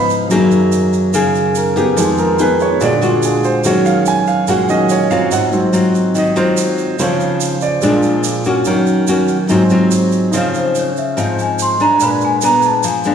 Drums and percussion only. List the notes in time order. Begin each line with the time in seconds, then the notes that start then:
0.10 shaker
0.31 shaker
0.51 shaker
0.72 shaker
0.93 shaker
1.14 shaker
1.35 shaker
1.55 shaker
1.77 shaker
1.97 shaker
2.18 shaker
2.39 shaker
2.60 shaker
2.81 shaker
3.02 shaker
3.22 shaker
3.44 shaker
3.64 shaker
3.86 shaker
4.06 shaker
4.27 shaker
4.47 shaker
4.69 shaker
4.89 shaker
5.11 shaker
5.31 shaker
5.52 shaker
5.73 shaker
5.95 shaker
6.15 shaker
6.36 shaker
6.57 shaker
6.78 shaker
6.99 shaker
7.20 shaker
7.40 shaker
7.61 shaker
7.82 shaker
8.03 shaker
8.24 shaker
8.44 shaker
8.65 shaker
8.86 shaker
9.07 shaker
9.28 shaker
9.49 shaker
9.70 shaker
9.91 shaker
10.12 shaker
10.33 shaker
10.54 shaker
10.75 shaker
10.97 shaker
11.18 shaker
11.39 shaker
11.59 shaker
11.80 shaker
12.00 shaker
12.21 shaker
12.41 shaker
12.62 shaker
12.83 shaker
13.04 shaker